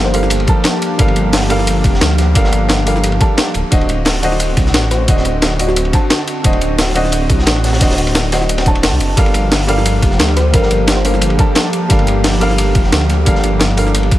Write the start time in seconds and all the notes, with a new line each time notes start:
Already playing: G1 F3 G3 A#3 D4 G4 A4 A#4 F5
0.05 C5
0.13 G3 D4 A4 A#4 C5 F5, open hi-hat, ride
0.23 snare
0.30 closed hi-hat, ride
0.40 ride
0.47 G3 D4 A4 A#4 A5, kick, closed hi-hat, ride
0.64 snare, closed hi-hat, ride
0.82 closed hi-hat, ride
0.98 G1 G3 D4 A4 A#4 F5, kick, closed hi-hat, ride
1.08 ride
1.16 G1, closed hi-hat, ride
1.33 snare, closed hi-hat, open hi-hat
1.42 snare
1.49 G3 D4 A4 A#4 F5, closed hi-hat, ride
1.59 snare
1.67 closed hi-hat, ride
1.84 F1, kick, closed hi-hat, ride
1.94 snare
2.01 D2, snare, closed hi-hat, ride
2.11 ride
2.18 snare, closed hi-hat, ride
2.34 G1 G3 D4 A4 A#4 F5, kick, closed hi-hat, ride
2.44 snare
2.52 G1, closed hi-hat, ride
2.69 snare, closed hi-hat, ride
2.86 G3 D4 A4 A#4 F5, open hi-hat, ride
2.96 snare
3.04 closed hi-hat, ride
3.12 ride
3.20 G3 D4 A4 A#4 A5, kick, closed hi-hat, ride
3.37 snare, closed hi-hat, ride
3.54 D1 C4 F#4, closed hi-hat, ride
3.71 D1 D3 D4 F#4 C5 D#5, kick, closed hi-hat, ride
3.81 ride
3.89 D1, closed hi-hat, ride
4.05 snare, closed hi-hat, open hi-hat
4.15 snare
4.22 D3 D4 F#4 C5 D#5, closed hi-hat, ride
4.32 snare
4.40 closed hi-hat, ride
4.57 C2, kick, closed hi-hat, ride
4.66 snare
4.74 A1, snare, closed hi-hat, ride
4.84 ride
4.91 C5, snare, closed hi-hat, ride
5.07 D1 D3 D4 F#4 C5 D#5, kick, closed hi-hat, ride
5.17 snare
5.25 D1, closed hi-hat, ride
5.42 snare, closed hi-hat, ride
5.59 D3 D4 F#4 C5 D#5, open hi-hat, ride
5.68 F#4, snare
5.76 closed hi-hat, ride
5.85 ride
5.92 D3 D4 F#4 C5 A5, kick, closed hi-hat, ride
6.10 snare, closed hi-hat, ride
6.27 closed hi-hat, ride
6.43 D1 D3 D4 F#4 C5 D#5, kick, closed hi-hat, ride
6.53 ride
6.61 D1, closed hi-hat, ride
6.79 snare, closed hi-hat, open hi-hat
6.89 snare
6.94 D3 D4 F#4 C5 D#5, closed hi-hat, ride
7.05 snare
7.12 closed hi-hat, ride
7.29 C2, kick, closed hi-hat, ride
7.39 snare
7.47 A1, snare, closed hi-hat, ride
7.56 ride
7.64 snare, closed hi-hat, open hi-hat
7.73 snare, open hi-hat
7.80 D1 D3 D4 F#4 C5 D#5, kick, snare, closed hi-hat, open hi-hat
7.90 snare, open hi-hat
7.98 D1, closed hi-hat, ride
8.07 snare, ride
8.15 snare, closed hi-hat, ride
8.32 D3 D4 F#4 C5 D#5, snare, open hi-hat, ride
8.41 snare
8.49 closed hi-hat, ride
8.58 snare, ride
8.65 D3 D4 F#4 C5 A5, kick, closed hi-hat
8.75 ride
8.83 F#1, snare, closed hi-hat, open hi-hat
8.92 C2, snare
9.00 F#1, closed hi-hat, ride
9.16 G1 F3 G3 A#3 D4 G4 A4 A#4 F5, kick, closed hi-hat, ride
9.26 ride
9.34 G1, closed hi-hat, ride
9.52 snare, closed hi-hat, open hi-hat
9.61 snare
9.67 G3 D4 A4 A#4 F5, closed hi-hat, ride
9.78 snare
9.86 closed hi-hat, ride
10.02 F1, kick, closed hi-hat, ride
10.11 snare
10.19 D2, snare, closed hi-hat, ride
10.28 ride
10.36 C5, snare, closed hi-hat, ride
10.52 G1 G3 D4 A4 A#4 F5, kick, closed hi-hat, ride
10.62 A#4, snare
10.71 G1, closed hi-hat, ride
10.87 snare, closed hi-hat, ride
10.97 C5
11.04 G3 D4 A4 A#4 C5 F5, open hi-hat, ride
11.14 snare
11.21 closed hi-hat, ride
11.30 ride
11.37 G3 D4 A4 A#4 A5, kick, closed hi-hat, ride
11.55 snare, closed hi-hat, ride
11.73 closed hi-hat, ride
11.89 G1 G3 D4 A4 A#4 F5, kick, closed hi-hat, ride
11.99 ride
12.07 G1, closed hi-hat, ride
12.24 snare, closed hi-hat, open hi-hat
12.33 snare
12.40 G3 D4 A4 A#4 F5, closed hi-hat, ride
12.50 snare
12.58 closed hi-hat, ride
12.75 F1, kick, closed hi-hat, ride
12.84 snare
12.92 D2, snare, closed hi-hat, ride
13.01 ride
13.10 snare, closed hi-hat, ride
13.25 G1 G3 D4 A4 A#4 F5, kick, closed hi-hat, ride
13.35 snare
13.43 G1, closed hi-hat, ride
13.60 snare, closed hi-hat, ride
13.77 G3 D4 A4 A#4 F5, open hi-hat, ride
13.87 snare
13.95 closed hi-hat, ride
14.03 ride
14.12 kick, closed hi-hat, ride